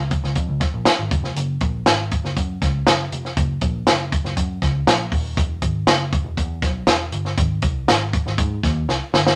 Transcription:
0.00 0.16 C#2 medium
0.11 kick medium
0.11 closed hi-hat medium
0.24 0.34 C#2 medium
0.24 snare soft
0.35 0.46 F2 medium
0.35 kick medium
0.35 closed hi-hat medium
0.49 0.59 C#2 medium
0.60 kick loud
0.60 snare soft
0.60 closed hi-hat medium
0.74 0.84 A#1 medium
0.85 snare loud
0.85 closed hi-hat medium
0.99 1.09 G#1 medium
1.11 1.21 F#1 loud
1.11 kick loud
1.11 closed hi-hat medium
1.23 1.33 F1 medium
1.23 snare soft
1.36 1.56 F#1 loud
1.36 closed hi-hat medium
1.60 1.81 A#1 medium
1.60 kick medium
1.60 closed hi-hat medium
1.86 2.17 G#1 medium
1.86 snare loud
1.86 closed hi-hat medium
2.11 kick medium
2.11 closed hi-hat medium
2.24 2.34 F#1 medium
2.24 snare soft
2.37 2.57 F#2 medium
2.37 kick medium
2.37 closed hi-hat medium
2.62 2.82 C#2 medium
2.62 kick medium
2.62 snare soft
2.62 closed hi-hat medium
2.87 3.07 F#1 medium
2.87 snare loud
2.87 closed hi-hat loud
3.12 3.32 F1 medium
3.12 closed hi-hat medium
3.25 snare soft
3.37 3.57 F#1 loud
3.37 kick loud
3.37 closed hi-hat medium
3.61 3.82 A#1 medium
3.61 kick medium
3.61 closed hi-hat medium
3.87 4.17 F#1 medium
3.87 snare loud
3.87 closed hi-hat medium
4.12 kick loud
4.12 closed hi-hat medium
4.24 4.34 F#1 medium
4.24 snare soft
4.37 4.57 F#2 medium
4.37 kick medium
4.37 closed hi-hat medium
4.62 4.82 C#2 medium
4.62 kick medium
4.62 snare soft
4.62 closed hi-hat medium
4.87 5.07 A#1 medium
4.87 snare loud
4.87 closed hi-hat medium
5.12 5.32 D#1 medium
5.12 kick medium
5.12 open hi-hat medium
5.37 5.57 E1 loud
5.37 kick loud
5.37 closed hi-hat medium
5.62 5.82 G#1 medium
5.62 kick medium
5.62 closed hi-hat medium
5.87 6.17 F#1 loud
5.87 snare loud
5.87 closed hi-hat medium
6.13 kick loud
6.13 closed hi-hat medium
6.24 6.35 E1 medium
6.37 6.58 E2 loud
6.37 kick medium
6.37 closed hi-hat medium
6.62 6.83 B1 medium
6.62 kick loud
6.62 snare soft
6.62 closed hi-hat medium
6.87 7.07 E1 medium
6.87 snare loud
6.87 closed hi-hat medium
7.12 7.33 G1 medium
7.12 closed hi-hat medium
7.25 snare soft
7.38 7.58 G#1 loud
7.38 kick loud
7.38 closed hi-hat medium
7.62 7.83 C2 medium
7.62 kick loud
7.62 closed hi-hat medium
7.88 8.18 G#1 medium
7.88 snare loud
7.88 closed hi-hat medium
8.13 kick medium
8.13 closed hi-hat medium
8.26 8.36 G#1 medium
8.26 snare soft
8.38 8.58 G#2 medium
8.38 kick loud
8.38 closed hi-hat medium
8.63 8.84 D#2 loud
8.63 kick medium
8.63 snare soft
8.63 closed hi-hat medium
8.88 8.99 C2 medium
8.88 snare medium
9.13 9.34 G1 loud
9.13 snare medium
9.27 snare medium

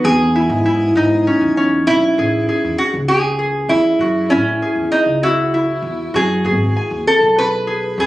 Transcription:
0.00 2.84 B3 medium
0.00 0.20 C#4 medium
0.00 0.42 D#4 medium
0.00 0.36 F#4 medium
0.04 0.47 E2 loud
0.04 1.53 G#4 medium
0.36 0.65 E4 medium
0.49 0.92 G#2 medium
0.66 1.03 E4 medium
0.95 1.24 G#2 medium
0.95 3.67 D#4 medium
1.27 1.57 C#4 medium
1.41 1.84 E2 medium
1.57 4.47 C#4 medium
1.87 2.01 B1 medium
1.87 2.78 E4 medium
2.18 2.46 A1 medium
2.18 2.48 G#4 medium
2.49 3.38 G#4 medium
2.64 2.78 E2 medium
2.78 2.87 F#4 medium
2.94 3.66 C#2 medium
3.08 3.72 G#4 medium
3.39 4.62 G#4 medium
3.69 3.98 E2 medium
3.69 4.33 E4 medium
3.99 4.32 F#2 medium
3.99 5.23 F#4 medium
4.30 4.59 A1 medium
4.30 4.91 C#4 medium
4.30 5.53 E4 medium
4.62 6.45 G#4 medium
4.76 4.90 E2 medium
4.92 5.23 D#4 medium
5.06 5.79 C#2 medium
5.23 6.17 E4 medium
5.23 6.14 F#4 medium
5.54 8.06 E4 medium
5.82 6.11 E2 medium
6.14 6.46 F#2 medium
6.14 8.06 F#4 medium
6.14 7.03 G#4 medium
6.44 6.73 G#1 medium
6.44 7.67 G#4 medium
6.76 8.06 G#5 medium
6.91 7.05 D#2 medium
7.07 7.38 A4 medium
7.21 7.93 B1 medium
7.38 8.00 B4 medium
7.67 8.06 G#4 medium
7.98 8.06 D#2 medium
7.98 8.06 G#4 medium

